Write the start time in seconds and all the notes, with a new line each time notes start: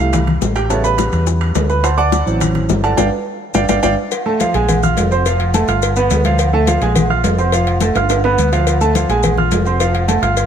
Already playing: E3
0.00 C2 G3 A3 F5
0.13 high bongo, high conga, low conga, high timbale, maracas
0.27 high conga, low conga, high timbale
0.41 A1, high bongo, low bongo, high conga, low timbale, maracas
0.55 G4 G5, high bongo, high conga, high timbale, maracas
0.69 C#3 G3 B3 A4 C#5 E5 A5, high bongo, high conga, high timbale, maracas
0.84 B4 B5, high bongo, high conga, maracas
0.98 high bongo, high conga, high timbale, low timbale, maracas
1.12 E2, high bongo, high timbale, maracas
1.27 high bongo, high conga, maracas
1.41 high conga, high timbale
1.55 D2, high bongo, low bongo, high conga, high timbale, low timbale, maracas
1.69 B4 B5, high bongo, maracas
1.84 C5 F#5 A5 C6, high bongo, high conga, high timbale, maracas
1.98 D5 F#5 A5 D6, high bongo, high conga
2.12 high bongo, high conga, high timbale, low timbale, maracas
2.26 A1 E3 F#3 C4, high bongo, high conga, maracas
2.40 high bongo, high conga, low conga, high timbale, maracas
2.55 high conga, low conga, high timbale
2.69 G1, high bongo, low bongo, high conga, low timbale, maracas
2.84 A4 D5 F#5 A5, high bongo, high conga, high timbale, maracas
2.97 G1 D5 F5 G5, high bongo, high conga, high timbale, maracas
3.54 G1 D5 F5 G5, high bongo, high conga, high timbale, maracas
3.69 G1 D5 F5 G5, high bongo, high conga, high timbale, maracas
3.83 G1 D5 F5 G5, high bongo, high conga, high timbale, maracas
4.11 cowbell, high conga, low agogo, maracas
4.26 A3 A4 A5, high conga, low agogo
4.40 F3 F4 F5, cowbell, high conga, low timbale, maracas
4.54 A#1 G#3 G#4 G#5, cowbell, high conga, low agogo, maracas
4.68 cowbell, high conga, low conga, low agogo, maracas
4.83 F4 F5 F6, high conga, low conga, maracas
4.97 F1, cowbell, high conga, low timbale, low agogo, maracas
5.11 C4 C5 C6, high conga, low agogo, maracas
5.26 F3 F4 F5, cowbell, high conga, maracas
5.39 cowbell, high conga, low agogo
5.54 A3 A4 A5, cowbell, high conga, low timbale, low agogo, maracas
5.68 G1 F4 F5 F6, cowbell, maracas
5.82 cowbell, high conga, low agogo, maracas
5.96 B3 B4 B5, high conga, low agogo, maracas
6.10 D2, cowbell, high conga, low timbale, maracas
6.24 F3 F4 F5, cowbell, high conga, low agogo, maracas
6.39 cowbell, high conga, low agogo, maracas
6.53 A3 A4 A5, high conga, low agogo
6.67 F3 F4 F5, cowbell, high conga, low timbale, maracas
6.81 A#1 G#3 G#4 G#5, cowbell, high conga, low agogo, maracas
6.95 cowbell, high conga, low conga, low agogo, maracas
7.10 F4 F5 F6, high conga
7.24 F1, cowbell, high conga, low timbale, low agogo, maracas
7.38 C4 C5 C6, high conga, low agogo, maracas
7.52 F3 F4 F5, cowbell, high conga, maracas
7.67 cowbell, high conga, low agogo
7.81 A3 A4 A5, cowbell, high conga, low timbale, low agogo, maracas
7.95 G1 F4 F5 F6, cowbell, high timbale, maracas
8.09 cowbell, high conga, high timbale, low agogo, maracas
8.24 B3 B4 B5, high conga, high timbale, low agogo
8.38 D2, cowbell, high conga, maracas
8.52 F3 F4 F5, cowbell, low timbale, low agogo, maracas
8.67 cowbell, high conga, low agogo, maracas
8.81 A3 A4 A5, high conga, low agogo, maracas
8.95 F3 F4 F5, cowbell, high conga, low timbale, maracas
9.09 A#1 G#3 G#4 G#5, cowbell, high conga, low agogo, maracas
9.23 cowbell, high conga, low conga, low agogo, maracas
9.38 F4 F5 F6, high conga, low conga
9.51 F1, cowbell, high conga, low timbale, low agogo, maracas
9.65 C4 C5 C6, high conga, low agogo, maracas
9.80 F3 F4 F5, cowbell, high conga, maracas
9.94 cowbell, high conga, low agogo
10.08 A3 A4 A5, cowbell, high conga, low timbale, low agogo, maracas
10.22 G1 F4 F5 F6, cowbell, maracas
10.37 cowbell, high conga, low agogo, maracas